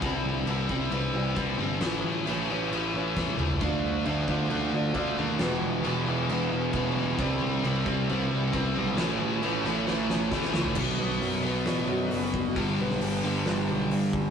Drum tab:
CC |x---x---x---x---|x---x---x-------|x---x---x---x---|x---x---x---x---|
HH |----------------|----------------|----------------|----------------|
SD |----------------|o-----------o---|----------------|o---------------|
T1 |----------------|-------------o--|----------------|----------------|
T2 |----------------|--------------o-|----------------|----------------|
FT |----------------|---------------o|----------------|----------------|
BD |o-----o-----o---|------------o---|o-----o-----o---|------------o---|

CC |x---x---x---x---|x---x-----------|x---------------|----------------|
HH |----------------|----------------|----o---o---o---|o---o---o---o---|
SD |----------------|o-----o-o-o-ooo-|---o----o-------|---o----o-------|
T1 |----------------|----------------|----------------|----------------|
T2 |----------------|----------------|----------------|----------------|
FT |----------------|---------------o|----------------|----------------|
BD |o-----o-----o---|------------o---|o-------------o-|o-------------o-|